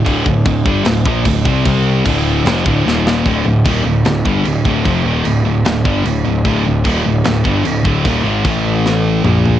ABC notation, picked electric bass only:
X:1
M:4/4
L:1/8
Q:1/4=150
K:Dphr
V:1 name="Picked electric bass" clef=bass
D,,, D,,, D,,, G,,, D,,, B,,, D,,, C,, | C,,2 D,,,2 F,,, D,,, E,,,2 | D,,, D,,, E,,, D,,, D,,, G,,, D,,, D,,, | F,,, E,,, D,,, D,,, D,,, G,,, D,,, D,,, |
D,,, D,,, E,,, D,,, D,,, G,,, D,,, D,,, | E,,, ^G,,, A,,,4 B,,,2 |]